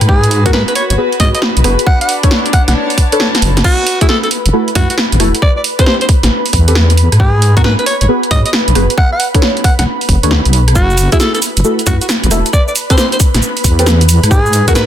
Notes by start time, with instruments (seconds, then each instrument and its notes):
Already playing: string section B4, ambient pad B4 B5
0.01 wobble bass G#2, cross-stick, closed hi-hat
0.09 string section F#4, alto saxophone G#4, kick
0.24 closed hi-hat
0.31 open hi-hat
0.45 synth stab B3 F#4 G#4 A#4, alto saxophone F#4, kick, closed hi-hat
0.53 alto saxophone B4, snare
0.68 alto saxophone B4, cross-stick, closed hi-hat
0.75 alto saxophone C#5, open hi-hat
0.90 wobble bass G#1, alto saxophone C#5, closed hi-hat
0.97 synth stab B3 F#4 G#4 B4
1.12 closed hi-hat
1.20 wobble bass G#2, synth stab B3 F#4 G#4 C#5, alto saxophone D#5, kick, open hi-hat
1.35 alto saxophone D#5, cross-stick, closed hi-hat
1.42 snare
1.57 wobble bass B1, closed hi-hat
1.64 wobble bass F#1, synth stab B3 F#4 G#4 B4, cross-stick, open hi-hat
1.79 closed hi-hat
1.87 string section D4, alto saxophone F#5, kick
2.01 alto saxophone F#5, closed hi-hat
2.09 open hi-hat
2.23 synth stab D4 A4 B4 C#5, kick, closed hi-hat
2.28 string section C#5, snare
2.46 cross-stick, closed hi-hat
2.53 alto saxophone F#5, kick, open hi-hat
2.68 wobble bass B1, alto saxophone F#5, string section A5, snare, closed hi-hat
2.90 open hi-hat
2.98 kick, open hi-hat
3.12 synth stab D4 A4 B4 C#5, closed hi-hat
3.20 snare
3.35 snare, closed hi-hat
3.42 wobble bass F#1, open hi-hat
3.57 snare, closed hi-hat
3.64 alto saxophone F#4, ambient pad B4 B5, kick, crash
3.87 open hi-hat
4.01 synth stab A3 E4 F#4 G#4, alto saxophone E4, kick, closed hi-hat
4.09 alto saxophone A4, snare
4.23 alto saxophone A4, cross-stick, closed hi-hat
4.31 open hi-hat
4.46 wobble bass F#1, closed hi-hat
4.53 synth stab A3 E4 F#4 A4
4.68 closed hi-hat
4.75 wobble bass F#2, synth stab A3 E4 F#4 B4, alto saxophone F#4, kick, open hi-hat
4.90 alto saxophone F#4, closed hi-hat
4.98 snare
5.12 wobble bass A1, closed hi-hat
5.20 wobble bass E1, synth stab A3 E4 F#4 A4, cross-stick, open hi-hat
5.35 closed hi-hat
5.42 alto saxophone D5, kick
5.57 alto saxophone D5
5.64 open hi-hat
5.79 synth stab C4 G4 A4 B4, alto saxophone C5, kick, closed hi-hat
5.86 alto saxophone C5, snare
6.01 alto saxophone C5, closed hi-hat
6.09 kick, open hi-hat
6.23 wobble bass A1, snare, closed hi-hat
6.46 open hi-hat
6.53 wobble bass E2, kick, open hi-hat
6.68 synth stab C4 G4 A4 B4, closed hi-hat
6.75 snare
6.90 closed hi-hat
6.97 open hi-hat
7.12 wobble bass G#2, cross-stick, closed hi-hat
7.20 alto saxophone G#4, kick
7.42 open hi-hat
7.57 synth stab B3 F#4 G#4 A#4, alto saxophone F#4, kick, closed hi-hat
7.64 alto saxophone B4, snare
7.79 alto saxophone B4, cross-stick, closed hi-hat
7.86 alto saxophone C#5, open hi-hat
8.01 wobble bass G#1, alto saxophone C#5, closed hi-hat
8.09 synth stab B3 F#4 G#4 B4
8.23 closed hi-hat
8.31 wobble bass G#2, synth stab B3 F#4 G#4 C#5, alto saxophone D#5, kick, open hi-hat
8.46 alto saxophone D#5, closed hi-hat
8.53 snare
8.68 wobble bass B1, closed hi-hat
8.75 wobble bass F#1, synth stab B3 F#4 G#4 B4, cross-stick, open hi-hat
8.90 closed hi-hat
8.98 alto saxophone F#5, kick
9.12 alto saxophone F#5
9.20 open hi-hat
9.34 synth stab D4 A4 B4 C#5, kick, closed hi-hat
9.42 snare
9.57 closed hi-hat
9.64 alto saxophone F#5, kick, open hi-hat
9.79 wobble bass B1, alto saxophone F#5, snare, closed hi-hat
10.01 open hi-hat
10.09 wobble bass F#1, kick, open hi-hat
10.23 wobble bass D2, synth stab D4 A4 B4 C#5, closed hi-hat
10.31 snare
10.45 wobble bass B1, closed hi-hat
10.53 open hi-hat
10.68 cross-stick, closed hi-hat
10.75 wobble bass F#1, alto saxophone F#4, ambient pad B4 B5, kick, shaker
10.90 shaker
10.98 open hi-hat, shaker
11.12 synth stab A3 E4 F#4 G#4, alto saxophone E4, kick, closed hi-hat, shaker
11.20 alto saxophone A4, snare, shaker
11.34 alto saxophone A4, cross-stick, closed hi-hat, shaker
11.42 open hi-hat, shaker
11.57 wobble bass F#1, closed hi-hat, shaker
11.64 synth stab A3 E4 F#4 A4, shaker
11.79 closed hi-hat, shaker
11.86 wobble bass F#2, synth stab A3 E4 F#4 B4, alto saxophone F#4, kick, open hi-hat, shaker
12.01 alto saxophone F#4, closed hi-hat, shaker
12.09 snare, shaker
12.24 wobble bass A1, closed hi-hat, shaker
12.31 wobble bass E1, synth stab A3 E4 F#4 A4, cross-stick, open hi-hat, shaker
12.46 closed hi-hat, shaker
12.53 alto saxophone D5, kick, shaker
12.68 alto saxophone D5, shaker
12.76 open hi-hat, shaker
12.90 synth stab C4 G4 A4 B4, alto saxophone C5, kick, closed hi-hat, shaker
12.98 alto saxophone C5, snare, shaker
13.12 alto saxophone C5, closed hi-hat, shaker
13.20 kick, open hi-hat, shaker
13.34 wobble bass A1, snare, closed hi-hat, shaker
13.42 shaker
13.57 open hi-hat, shaker
13.64 wobble bass E2, kick, open hi-hat, shaker
13.79 synth stab C4 G4 A4 B4, closed hi-hat, shaker
13.86 snare, shaker
14.01 closed hi-hat, shaker
14.09 open hi-hat, shaker
14.23 wobble bass G#2, cross-stick, closed hi-hat, shaker
14.31 alto saxophone G#4, kick, shaker
14.46 shaker
14.53 open hi-hat, shaker
14.68 synth stab B3 F#4 G#4 A#4, alto saxophone F#4, kick, closed hi-hat, shaker
14.75 alto saxophone B4, snare, shaker